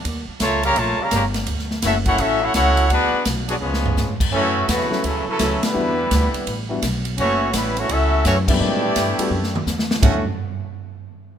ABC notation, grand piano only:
X:1
M:4/4
L:1/8
Q:"Swing" 1/4=168
K:D
V:1 name="Grand piano"
z8 | z8 | z8 | z3 [F,A,CEF] z2 [F,A,CEA] z |
[G,B,DEF] z4 [G,B,DEF] z2 | z6 z [G,A,B,DE] | [F,^G,_B,C_E] [=G,A,=B,D=E]2 [G,A,B,DF] z4 | [F,A,CDE] z6 z |]